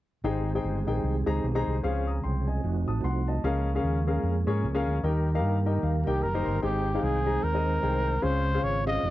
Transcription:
0.24 G#1 G#2 D#3 G#3 C4 D#4 G4 G#4 C5 G5
0.55 D#4 G#4 C5 G5
0.64 G1
0.87 A#1 D#4 G#4 A#4 G5
0.92 C5
1.03 C2
1.26 C#2 D#4 G#4 C5 A#5
1.44 B1
1.55 D#4 G#4 C5 A#5
1.67 C2
1.83 C#2 C#3 F3 C4 C#4 G#4 C5 F5
2.07 A#5 D#6
2.23 C2 G5 C6
2.47 D#5 G#5
2.64 F1 F3 A3 D#4 F#4
2.87 A1 A5 D#6
3.04 C2 F#5 C6
3.28 D#5 A5
3.43 C#2 C#3 G#3 A#3 C#4 G#4 A#4 F5
3.75 C#4 G#4 A#4 F5
3.84 D#2
4.07 C#4 G#4 A#4 F5
4.23 F2
4.46 G#2 C#4 G#4 A#4 C#5
4.63 C#2
4.75 C#4 G#4 A#4 F5
4.87 D2
5.03 D#2 D#3 G3 A#3 D#4 G4 A#4 G5
5.35 D#4 G4 A#4 F5
5.43 G2
5.66 D#4 G4 A#4 D#5 G5
5.83 D#2 F5
6.07 C2 D#4 G4 A#4 G5
6.22 F#1 A#4 A#5
6.34 D#4 G4 A#4 C5
6.45 G1 C6
6.62 G#1 G#2 D#3 G#3 C4 D#4 G4 G#4 C5 G5
6.94 D#4 G#4 C5 F5
7.03 C2 G#4
7.26 D#4 G#4 C5 A#5
7.43 D#2 A#4
7.54 D#4 G#4 C5 D#5
7.83 C2 D#4 G#4 A#4 G5
7.88 C5
8.22 C#2 C#3 C#4 F4 G#4 C5 F5
8.54 C#4 G#4 C5 F5
8.63 G#1 C#5
8.86 C#4 G#4 C5 D#5 F5
9.03 F1 A3 D#4 F#4

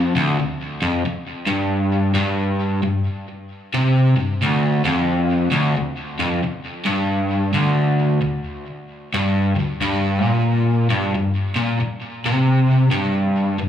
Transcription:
Already playing: F2
0.16 D2
0.40 D2
0.82 F2
1.06 muted overdriven electric guitar stroke
1.47 G2
2.14 G2
2.83 G2
3.74 C3
4.17 G2
4.42 D2
4.85 F2
5.51 D2
5.78 D2
6.19 F2
6.43 muted overdriven electric guitar stroke
6.86 G2
7.54 D2
8.22 D2
9.14 G2
9.56 D2
9.81 G2
10.22 A#2
10.90 G2
11.15 G2
11.56 A#2
11.82 muted overdriven electric guitar stroke
12.26 C3
12.91 G2
13.59 G2

